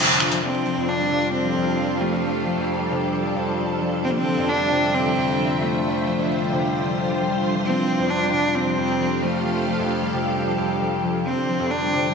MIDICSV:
0, 0, Header, 1, 5, 480
1, 0, Start_track
1, 0, Key_signature, -1, "major"
1, 0, Tempo, 451128
1, 459, Time_signature, 4, 2, 24, 8
1, 12918, End_track
2, 0, Start_track
2, 0, Title_t, "String machine"
2, 0, Program_c, 0, 50
2, 0, Note_on_c, 0, 50, 81
2, 0, Note_on_c, 0, 62, 83
2, 0, Note_on_c, 0, 65, 75
2, 0, Note_on_c, 0, 72, 80
2, 0, Note_on_c, 0, 76, 86
2, 458, Note_on_c, 0, 53, 68
2, 459, Note_off_c, 0, 50, 0
2, 459, Note_off_c, 0, 76, 0
2, 786, Note_on_c, 0, 69, 79
2, 839, Note_on_c, 0, 77, 77
2, 1068, Note_on_c, 0, 67, 80
2, 1278, Note_off_c, 0, 72, 0
2, 1821, Note_off_c, 0, 65, 0
2, 4298, Note_off_c, 0, 53, 0
2, 4299, Note_off_c, 0, 77, 0
2, 4299, Note_on_c, 0, 50, 68
2, 4506, Note_on_c, 0, 65, 72
2, 4764, Note_on_c, 0, 76, 84
2, 5571, Note_off_c, 0, 69, 0
2, 5603, Note_on_c, 0, 72, 86
2, 5834, Note_off_c, 0, 67, 0
2, 8138, Note_on_c, 0, 53, 82
2, 8139, Note_off_c, 0, 50, 0
2, 8139, Note_off_c, 0, 76, 0
2, 8969, Note_off_c, 0, 65, 0
2, 9040, Note_on_c, 0, 67, 90
2, 9206, Note_on_c, 0, 69, 75
2, 9468, Note_off_c, 0, 72, 0
2, 9548, Note_on_c, 0, 77, 74
2, 11978, Note_off_c, 0, 53, 0
2, 11978, Note_off_c, 0, 77, 0
2, 11978, Note_on_c, 0, 50, 70
2, 12275, Note_on_c, 0, 72, 76
2, 12711, Note_on_c, 0, 65, 64
2, 12918, Note_off_c, 0, 50, 0
2, 12918, Note_off_c, 0, 62, 0
2, 12918, Note_off_c, 0, 65, 0
2, 12918, Note_off_c, 0, 67, 0
2, 12918, Note_off_c, 0, 69, 0
2, 12918, Note_off_c, 0, 72, 0
2, 12918, End_track
3, 0, Start_track
3, 0, Title_t, "Cello"
3, 0, Program_c, 1, 42
3, 459, Note_on_c, 1, 60, 95
3, 941, Note_on_c, 1, 62, 98
3, 957, Note_off_c, 1, 60, 0
3, 1414, Note_off_c, 1, 62, 0
3, 1421, Note_on_c, 1, 60, 100
3, 2140, Note_on_c, 1, 57, 81
3, 2156, Note_off_c, 1, 60, 0
3, 3100, Note_off_c, 1, 57, 0
3, 4300, Note_on_c, 1, 60, 97
3, 4373, Note_on_c, 1, 58, 79
3, 4389, Note_off_c, 1, 60, 0
3, 4449, Note_on_c, 1, 60, 103
3, 4465, Note_off_c, 1, 58, 0
3, 4780, Note_on_c, 1, 62, 106
3, 4796, Note_off_c, 1, 60, 0
3, 5258, Note_on_c, 1, 60, 100
3, 5274, Note_off_c, 1, 62, 0
3, 5979, Note_on_c, 1, 57, 84
3, 5995, Note_off_c, 1, 60, 0
3, 6939, Note_off_c, 1, 57, 0
3, 8141, Note_on_c, 1, 60, 96
3, 8620, Note_on_c, 1, 62, 106
3, 8636, Note_off_c, 1, 60, 0
3, 8854, Note_off_c, 1, 62, 0
3, 8860, Note_on_c, 1, 62, 97
3, 9099, Note_on_c, 1, 60, 101
3, 9115, Note_off_c, 1, 62, 0
3, 9819, Note_on_c, 1, 57, 85
3, 9835, Note_off_c, 1, 60, 0
3, 10779, Note_off_c, 1, 57, 0
3, 11979, Note_on_c, 1, 60, 96
3, 12458, Note_on_c, 1, 62, 105
3, 12474, Note_off_c, 1, 60, 0
3, 12918, Note_off_c, 1, 62, 0
3, 12918, End_track
4, 0, Start_track
4, 0, Title_t, "Harp"
4, 0, Program_c, 2, 46
4, 0, Note_on_c, 2, 41, 95
4, 0, Note_on_c, 2, 48, 110
4, 0, Note_on_c, 2, 53, 77
4, 0, Note_on_c, 2, 55, 71
4, 0, Note_on_c, 2, 57, 82
4, 0, Note_on_c, 2, 60, 80
4, 0, Note_on_c, 2, 65, 86
4, 205, Note_off_c, 2, 48, 0
4, 218, Note_on_c, 2, 48, 73
4, 272, Note_off_c, 2, 53, 0
4, 339, Note_on_c, 2, 53, 77
4, 446, Note_off_c, 2, 53, 0
4, 459, Note_on_c, 2, 53, 76
4, 512, Note_off_c, 2, 41, 0
4, 512, Note_off_c, 2, 48, 0
4, 512, Note_off_c, 2, 55, 0
4, 686, Note_off_c, 2, 53, 0
4, 699, Note_on_c, 2, 53, 66
4, 819, Note_on_c, 2, 41, 86
4, 1059, Note_on_c, 2, 55, 63
4, 1178, Note_on_c, 2, 48, 93
4, 1232, Note_off_c, 2, 53, 0
4, 1413, Note_off_c, 2, 60, 0
4, 1418, Note_on_c, 2, 60, 71
4, 1537, Note_on_c, 2, 53, 72
4, 1646, Note_off_c, 2, 41, 0
4, 1658, Note_on_c, 2, 41, 91
4, 1775, Note_off_c, 2, 65, 0
4, 1779, Note_on_c, 2, 65, 71
4, 1886, Note_off_c, 2, 53, 0
4, 1899, Note_on_c, 2, 53, 73
4, 2125, Note_off_c, 2, 53, 0
4, 2138, Note_on_c, 2, 53, 68
4, 2254, Note_off_c, 2, 65, 0
4, 2258, Note_on_c, 2, 65, 72
4, 2366, Note_off_c, 2, 53, 0
4, 2379, Note_on_c, 2, 53, 76
4, 2606, Note_off_c, 2, 53, 0
4, 2619, Note_on_c, 2, 53, 67
4, 2726, Note_off_c, 2, 41, 0
4, 2739, Note_on_c, 2, 41, 91
4, 2966, Note_off_c, 2, 55, 0
4, 2979, Note_on_c, 2, 55, 64
4, 3086, Note_off_c, 2, 48, 0
4, 3099, Note_on_c, 2, 48, 95
4, 3152, Note_off_c, 2, 53, 0
4, 3335, Note_off_c, 2, 60, 0
4, 3339, Note_on_c, 2, 60, 75
4, 3401, Note_off_c, 2, 57, 0
4, 3459, Note_on_c, 2, 53, 68
4, 3565, Note_off_c, 2, 41, 0
4, 3578, Note_on_c, 2, 41, 93
4, 3694, Note_off_c, 2, 65, 0
4, 3699, Note_on_c, 2, 65, 72
4, 3806, Note_off_c, 2, 53, 0
4, 3819, Note_on_c, 2, 53, 71
4, 4046, Note_off_c, 2, 53, 0
4, 4059, Note_on_c, 2, 53, 68
4, 4174, Note_off_c, 2, 65, 0
4, 4179, Note_on_c, 2, 65, 69
4, 4286, Note_off_c, 2, 53, 0
4, 4299, Note_on_c, 2, 53, 76
4, 4352, Note_off_c, 2, 41, 0
4, 4352, Note_off_c, 2, 48, 0
4, 4352, Note_off_c, 2, 55, 0
4, 4526, Note_off_c, 2, 53, 0
4, 4538, Note_on_c, 2, 53, 72
4, 4658, Note_on_c, 2, 41, 93
4, 4898, Note_on_c, 2, 55, 64
4, 5019, Note_on_c, 2, 48, 89
4, 5072, Note_off_c, 2, 53, 0
4, 5255, Note_off_c, 2, 60, 0
4, 5259, Note_on_c, 2, 60, 70
4, 5380, Note_on_c, 2, 53, 70
4, 5487, Note_off_c, 2, 41, 0
4, 5499, Note_on_c, 2, 41, 95
4, 5615, Note_off_c, 2, 65, 0
4, 5619, Note_on_c, 2, 65, 69
4, 5727, Note_off_c, 2, 53, 0
4, 5740, Note_on_c, 2, 53, 75
4, 5965, Note_off_c, 2, 53, 0
4, 5978, Note_on_c, 2, 53, 70
4, 6094, Note_off_c, 2, 65, 0
4, 6098, Note_on_c, 2, 65, 69
4, 6207, Note_off_c, 2, 53, 0
4, 6220, Note_on_c, 2, 53, 76
4, 6446, Note_off_c, 2, 53, 0
4, 6459, Note_on_c, 2, 53, 71
4, 6567, Note_off_c, 2, 41, 0
4, 6580, Note_on_c, 2, 41, 87
4, 6806, Note_off_c, 2, 55, 0
4, 6819, Note_on_c, 2, 55, 63
4, 6927, Note_off_c, 2, 48, 0
4, 6940, Note_on_c, 2, 48, 92
4, 6992, Note_off_c, 2, 53, 0
4, 7175, Note_off_c, 2, 60, 0
4, 7179, Note_on_c, 2, 60, 68
4, 7299, Note_on_c, 2, 53, 66
4, 7527, Note_off_c, 2, 55, 0
4, 7540, Note_on_c, 2, 55, 96
4, 7647, Note_off_c, 2, 53, 0
4, 7659, Note_on_c, 2, 53, 74
4, 7766, Note_off_c, 2, 53, 0
4, 7779, Note_on_c, 2, 53, 67
4, 7887, Note_off_c, 2, 53, 0
4, 7900, Note_on_c, 2, 53, 68
4, 8020, Note_on_c, 2, 52, 67
4, 8084, Note_off_c, 2, 65, 0
4, 8128, Note_off_c, 2, 53, 0
4, 8141, Note_on_c, 2, 53, 78
4, 8192, Note_off_c, 2, 41, 0
4, 8192, Note_off_c, 2, 48, 0
4, 8192, Note_off_c, 2, 52, 0
4, 8192, Note_off_c, 2, 55, 0
4, 8256, Note_off_c, 2, 60, 0
4, 8260, Note_on_c, 2, 60, 73
4, 8367, Note_off_c, 2, 53, 0
4, 8380, Note_on_c, 2, 53, 68
4, 8500, Note_on_c, 2, 41, 88
4, 8739, Note_on_c, 2, 55, 65
4, 8859, Note_on_c, 2, 48, 93
4, 8912, Note_off_c, 2, 53, 0
4, 9095, Note_off_c, 2, 60, 0
4, 9100, Note_on_c, 2, 60, 75
4, 9219, Note_on_c, 2, 53, 71
4, 9326, Note_off_c, 2, 41, 0
4, 9339, Note_on_c, 2, 41, 95
4, 9457, Note_on_c, 2, 65, 74
4, 9565, Note_off_c, 2, 53, 0
4, 9577, Note_on_c, 2, 53, 75
4, 9806, Note_off_c, 2, 53, 0
4, 9818, Note_on_c, 2, 53, 73
4, 9934, Note_off_c, 2, 65, 0
4, 9938, Note_on_c, 2, 65, 67
4, 10045, Note_off_c, 2, 53, 0
4, 10058, Note_on_c, 2, 53, 74
4, 10174, Note_off_c, 2, 60, 0
4, 10178, Note_on_c, 2, 60, 72
4, 10286, Note_off_c, 2, 53, 0
4, 10299, Note_on_c, 2, 53, 69
4, 10406, Note_off_c, 2, 41, 0
4, 10418, Note_on_c, 2, 41, 87
4, 10646, Note_off_c, 2, 55, 0
4, 10659, Note_on_c, 2, 55, 67
4, 10766, Note_off_c, 2, 48, 0
4, 10779, Note_on_c, 2, 48, 96
4, 10832, Note_off_c, 2, 53, 0
4, 11014, Note_off_c, 2, 60, 0
4, 11019, Note_on_c, 2, 60, 73
4, 11139, Note_on_c, 2, 53, 70
4, 11246, Note_off_c, 2, 41, 0
4, 11259, Note_on_c, 2, 41, 98
4, 11374, Note_off_c, 2, 65, 0
4, 11379, Note_on_c, 2, 65, 72
4, 11486, Note_off_c, 2, 53, 0
4, 11499, Note_on_c, 2, 53, 73
4, 11726, Note_off_c, 2, 53, 0
4, 11739, Note_on_c, 2, 53, 70
4, 11855, Note_off_c, 2, 65, 0
4, 11859, Note_on_c, 2, 65, 69
4, 11967, Note_off_c, 2, 53, 0
4, 11979, Note_on_c, 2, 53, 80
4, 12032, Note_off_c, 2, 41, 0
4, 12032, Note_off_c, 2, 48, 0
4, 12032, Note_off_c, 2, 55, 0
4, 12094, Note_off_c, 2, 60, 0
4, 12099, Note_on_c, 2, 60, 68
4, 12207, Note_off_c, 2, 53, 0
4, 12220, Note_on_c, 2, 53, 72
4, 12339, Note_on_c, 2, 41, 91
4, 12580, Note_on_c, 2, 55, 66
4, 12699, Note_on_c, 2, 48, 100
4, 12752, Note_off_c, 2, 53, 0
4, 12918, Note_off_c, 2, 41, 0
4, 12918, Note_off_c, 2, 48, 0
4, 12918, Note_off_c, 2, 55, 0
4, 12918, Note_off_c, 2, 60, 0
4, 12918, Note_off_c, 2, 65, 0
4, 12918, End_track
5, 0, Start_track
5, 0, Title_t, "Drums"
5, 97, Note_on_c, 9, 42, 36
5, 204, Note_off_c, 9, 42, 0
5, 217, Note_on_c, 9, 26, 58
5, 323, Note_off_c, 9, 26, 0
5, 337, Note_on_c, 9, 42, 55
5, 443, Note_off_c, 9, 42, 0
5, 12918, End_track
0, 0, End_of_file